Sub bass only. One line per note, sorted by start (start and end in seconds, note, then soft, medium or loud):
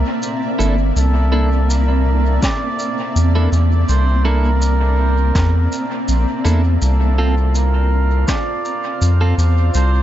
0.59 0.92 G1 medium
0.96 2.39 C2 loud
3.16 3.48 E2 loud
3.52 3.85 E2 loud
3.89 5.32 C2 loud
5.35 5.68 E2 medium
6.08 6.26 A#1 medium
6.45 6.78 E2 loud
6.82 8.25 C2 medium
9.01 9.34 F2 loud
9.38 9.70 E2 medium
9.75 10.03 C2 loud